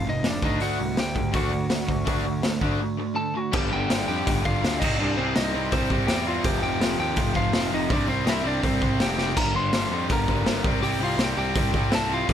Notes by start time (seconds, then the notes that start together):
0.05 F1 F2 C3 D#4
0.09 D#5
0.23 F1 F2 C3, snare, open hi-hat
0.27 D4 D5
0.42 D2 D3 A3 D4 D#4, kick
0.46 D#5
0.60 D2 D3 A3 D4 F#4 F#5, open hi-hat
0.78 C2 D3 A3
0.97 D2 D3 A3 G4 G5, snare, open hi-hat
1.15 D3 A3, kick
1.32 D2 D3 A3 D4 F#4, kick, open hi-hat
1.37 F#5
1.50 D3 A3
1.69 D2 D3 A3, snare, open hi-hat
1.88 D2 D3 A3, kick
2.05 D2 D3 A3 D4, kick, open hi-hat
2.24 D2 D3 A3
2.42 D2 D3 A3, snare, open hi-hat
2.61 D2 D3 A3 D4, kick
2.80 D3 A3
2.97 D3 A3
3.14 D3 A3 A4 A5
3.34 D3 A3 F#4 F#5
3.51 G1 G2 D3 G3 G5, kick, crash
3.56 G4
3.70 G1 G2 D3 G3 G4 G5
3.88 G1 G2 D3 G3, snare, open hi-hat
4.08 F2 G2 D3 G3 G4 G5
4.25 G1 G2 D3 G3, kick, open hi-hat
4.41 G1 G2 D3 G3, kick
4.46 F4 F5
4.61 D2 G2 D3 G3, snare, open hi-hat
4.80 C2 C3 G3 C4 D#4 D#5, kick, crash
4.99 C2 C3 G3 C4 D4 D5
5.17 C2 C3 G3 C4 C5
5.35 C2 C3 G3 C4 D#4 D#5, snare, open hi-hat
5.54 C2 C3 G3 C4
5.72 C2 C3 G3 C4 C5, kick, open hi-hat
5.89 C2 C3 G3 C4, kick
6.07 E2 C3 G3 C4 G4 G5, snare, open hi-hat
6.27 C3 G3 C4 F4 F5
6.44 F1 F2 C3 F3 G4 G5, kick, open hi-hat
6.61 F1 F2 C3 F3 G4 G5
6.80 F1 F2 C3 F3, snare, open hi-hat
6.98 D#2 F2 C3 F3 G4 G5
7.15 F1 F2 C3 F3, kick, open hi-hat
7.33 F1 F2 C3 F3 F4 F5, kick
7.53 F1 F2 C3 F3, snare, open hi-hat
7.70 F1 F2 C3 F3 D#4 D#5
7.89 C2 C3 G3 C4 D4, kick, open hi-hat
7.93 D5
8.06 C2 C3 G3 C4 C5
8.26 C2 C3 G3 C4 E4 E5, snare, open hi-hat
8.44 C2 C3 G3 C4 D4 D5
8.63 C2 C3 G3 C4 C5, kick, open hi-hat
8.82 C2 C3 G3 C4, kick
9.00 F1 C3 G3 C4 G4 G5, snare, open hi-hat
9.18 C3 G3 C4 G4 G5, snare
9.36 G1 G2 D3 G3 A#4 A#5, kick, crash, splash
9.54 G1 G2 D3 G3 C5 C6
9.72 G1 G2 D3 G3, snare, open hi-hat
9.90 F2 G2 D3 G3
10.10 G1 G2 D3 G3 A#4 A#5, kick, open hi-hat
10.27 G1 G2 D3 G3, kick
10.44 G1 G2 D3 G3, snare, open hi-hat
10.63 C2 C3 G3 C4, kick
10.81 C2 C3 G3 C4 G4 G5, open hi-hat
10.99 C2 C3 G3 C4 F4
11.04 F5
11.17 C2 C3 G3 C4, snare, open hi-hat
11.23 G4 G5
11.37 C2 C3 G3 C4 G4 G5
11.55 C2 C3 G3 C4, kick, open hi-hat
11.71 C2 C3 G3 C4, kick
11.89 C2 C3 G3 C4 A4, snare, open hi-hat
11.95 A5
12.08 C3 G3 C4
12.12 C3 C4 F4 F5
12.25 F1 F2 C3 F3, kick, open hi-hat
12.30 F2